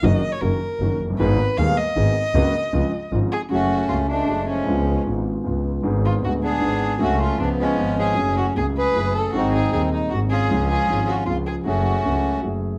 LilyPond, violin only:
\new Staff \with { instrumentName = "Violin" } { \time 3/4 \key cis \mixolydian \tempo 4 = 155 dis''8. cis''16 ais'4. r8 | b'4 eis''8 dis''4.~ | dis''2 r8 gis'8 | \key fis \minor fis'4 eis'8 d'4 cis'8~ |
cis'4 r2 | r8 eis'8 fis'8 gis'4. | fis'8 eis'8 d'8 cis'4 gis'8~ | gis'8 fis'8 gis'8 b'4 a'8 |
fis'8 gis'8 gis'8 dis'8 fis'8 gis'8~ | gis'8 gis'4 fis'8 eis'8 gis'8 | fis'2 r4 | }